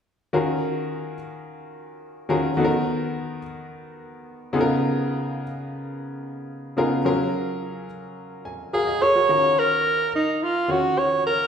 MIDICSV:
0, 0, Header, 1, 3, 480
1, 0, Start_track
1, 0, Key_signature, -6, "minor"
1, 0, Tempo, 559180
1, 291, Time_signature, 4, 2, 24, 8
1, 9846, End_track
2, 0, Start_track
2, 0, Title_t, "Alto saxophone"
2, 0, Program_c, 0, 65
2, 7501, Note_on_c, 0, 68, 95
2, 7745, Note_on_c, 0, 73, 110
2, 7758, Note_off_c, 0, 68, 0
2, 8231, Note_on_c, 0, 70, 92
2, 8244, Note_off_c, 0, 73, 0
2, 8702, Note_off_c, 0, 70, 0
2, 8716, Note_on_c, 0, 63, 83
2, 8955, Note_on_c, 0, 65, 82
2, 8968, Note_off_c, 0, 63, 0
2, 9195, Note_on_c, 0, 66, 88
2, 9208, Note_off_c, 0, 65, 0
2, 9430, Note_on_c, 0, 73, 86
2, 9443, Note_off_c, 0, 66, 0
2, 9662, Note_off_c, 0, 73, 0
2, 9671, Note_on_c, 0, 70, 95
2, 9846, Note_off_c, 0, 70, 0
2, 9846, End_track
3, 0, Start_track
3, 0, Title_t, "Grand piano"
3, 0, Program_c, 1, 0
3, 283, Note_on_c, 1, 51, 82
3, 286, Note_on_c, 1, 61, 70
3, 287, Note_on_c, 1, 65, 75
3, 289, Note_on_c, 1, 66, 77
3, 292, Note_on_c, 1, 68, 78
3, 294, Note_on_c, 1, 70, 86
3, 462, Control_c, 1, 64, 127
3, 979, Note_off_c, 1, 51, 0
3, 980, Note_off_c, 1, 61, 0
3, 981, Note_off_c, 1, 65, 0
3, 982, Note_off_c, 1, 66, 0
3, 983, Note_off_c, 1, 68, 0
3, 984, Note_off_c, 1, 70, 0
3, 1965, Note_on_c, 1, 61, 75
3, 1966, Note_on_c, 1, 51, 80
3, 1969, Note_on_c, 1, 65, 76
3, 1971, Note_on_c, 1, 66, 75
3, 1973, Note_on_c, 1, 68, 85
3, 1974, Note_on_c, 1, 70, 90
3, 2143, Note_off_c, 1, 61, 0
3, 2144, Note_off_c, 1, 51, 0
3, 2145, Note_off_c, 1, 65, 0
3, 2146, Note_off_c, 1, 66, 0
3, 2147, Note_off_c, 1, 68, 0
3, 2148, Note_off_c, 1, 70, 0
3, 2205, Note_on_c, 1, 51, 88
3, 2207, Note_on_c, 1, 59, 77
3, 2212, Note_on_c, 1, 63, 75
3, 2213, Note_on_c, 1, 66, 74
3, 2217, Note_on_c, 1, 69, 71
3, 2226, Control_c, 1, 64, 0
3, 2271, Note_on_c, 1, 70, 94
3, 2272, Note_off_c, 1, 69, 0
3, 2390, Control_c, 1, 64, 127
3, 2901, Note_off_c, 1, 51, 0
3, 2903, Note_off_c, 1, 59, 0
3, 2905, Note_off_c, 1, 63, 0
3, 2906, Note_off_c, 1, 66, 0
3, 2934, Note_off_c, 1, 70, 0
3, 3888, Note_on_c, 1, 49, 97
3, 3890, Note_on_c, 1, 59, 81
3, 3893, Note_on_c, 1, 63, 81
3, 3894, Note_on_c, 1, 65, 83
3, 3896, Note_on_c, 1, 68, 76
3, 3897, Note_on_c, 1, 69, 74
3, 3909, Control_c, 1, 64, 0
3, 3953, Note_off_c, 1, 69, 0
3, 3954, Note_on_c, 1, 70, 95
3, 4040, Control_c, 1, 64, 127
3, 4661, Note_off_c, 1, 49, 0
3, 4663, Note_off_c, 1, 59, 0
3, 4664, Note_off_c, 1, 63, 0
3, 4664, Note_off_c, 1, 65, 0
3, 4665, Note_off_c, 1, 68, 0
3, 4695, Note_off_c, 1, 70, 0
3, 5809, Note_on_c, 1, 49, 79
3, 5813, Note_on_c, 1, 59, 70
3, 5815, Note_on_c, 1, 63, 74
3, 5817, Note_on_c, 1, 65, 84
3, 5818, Note_on_c, 1, 68, 77
3, 5821, Note_on_c, 1, 70, 92
3, 5986, Note_off_c, 1, 49, 0
3, 5988, Note_off_c, 1, 59, 0
3, 5988, Note_off_c, 1, 63, 0
3, 5990, Note_off_c, 1, 65, 0
3, 5990, Note_off_c, 1, 68, 0
3, 5992, Note_off_c, 1, 70, 0
3, 6049, Note_on_c, 1, 54, 83
3, 6050, Note_on_c, 1, 61, 78
3, 6054, Note_on_c, 1, 65, 74
3, 6056, Note_on_c, 1, 68, 77
3, 6060, Note_on_c, 1, 70, 92
3, 6068, Control_c, 1, 64, 0
3, 6210, Control_c, 1, 64, 127
3, 6742, Note_off_c, 1, 54, 0
3, 6742, Note_off_c, 1, 61, 0
3, 6745, Note_off_c, 1, 65, 0
3, 6746, Note_off_c, 1, 68, 0
3, 6747, Note_off_c, 1, 70, 0
3, 7256, Note_on_c, 1, 80, 65
3, 7479, Note_off_c, 1, 80, 0
3, 7496, Note_on_c, 1, 77, 62
3, 7498, Note_on_c, 1, 70, 58
3, 7502, Note_on_c, 1, 66, 47
3, 7611, Note_off_c, 1, 70, 0
3, 7613, Note_off_c, 1, 66, 0
3, 7614, Note_on_c, 1, 75, 66
3, 7729, Note_off_c, 1, 75, 0
3, 7741, Note_on_c, 1, 73, 68
3, 7747, Note_on_c, 1, 70, 57
3, 7847, Note_off_c, 1, 70, 0
3, 7852, Note_off_c, 1, 73, 0
3, 7860, Note_on_c, 1, 70, 60
3, 7865, Note_on_c, 1, 66, 53
3, 7942, Note_off_c, 1, 77, 0
3, 7968, Note_off_c, 1, 66, 0
3, 7971, Note_off_c, 1, 70, 0
3, 7974, Note_on_c, 1, 61, 62
3, 7975, Note_on_c, 1, 51, 66
3, 7978, Note_on_c, 1, 65, 66
3, 7981, Note_on_c, 1, 66, 63
3, 7982, Note_on_c, 1, 68, 63
3, 7984, Note_on_c, 1, 70, 73
3, 7985, Control_c, 1, 64, 0
3, 8109, Control_c, 1, 64, 127
3, 8663, Note_off_c, 1, 61, 0
3, 8664, Note_off_c, 1, 51, 0
3, 8665, Note_off_c, 1, 65, 0
3, 8667, Note_off_c, 1, 66, 0
3, 8667, Note_off_c, 1, 68, 0
3, 8668, Note_off_c, 1, 70, 0
3, 9170, Note_on_c, 1, 51, 59
3, 9171, Note_on_c, 1, 61, 60
3, 9173, Note_on_c, 1, 65, 59
3, 9175, Note_on_c, 1, 66, 65
3, 9177, Note_on_c, 1, 68, 58
3, 9182, Note_on_c, 1, 73, 73
3, 9689, Note_off_c, 1, 51, 0
3, 9689, Note_off_c, 1, 61, 0
3, 9691, Note_off_c, 1, 65, 0
3, 9692, Note_off_c, 1, 66, 0
3, 9692, Note_off_c, 1, 68, 0
3, 9695, Note_off_c, 1, 73, 0
3, 9846, End_track
0, 0, End_of_file